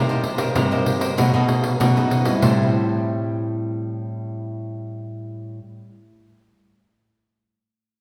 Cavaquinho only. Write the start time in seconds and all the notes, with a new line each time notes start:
0.09 A#4 C5 D#5
0.23 muted cavaquinho stroke
0.38 A#4 C5 D#5
0.55 D#4 A#4 C5 D#5
0.71 A#4 C5 D#5
1.00 A#4 C5 D#5
1.17 D#4 A4 B4 D#5
1.34 A4 B4 D#5
1.48 muted cavaquinho stroke
1.80 D#4 A4 B4 D#5
1.96 A4 B4 D#5
2.10 D#4 A4 B4 D#5
2.25 A4 B4 D#5
2.42 G4 C5 E5 A5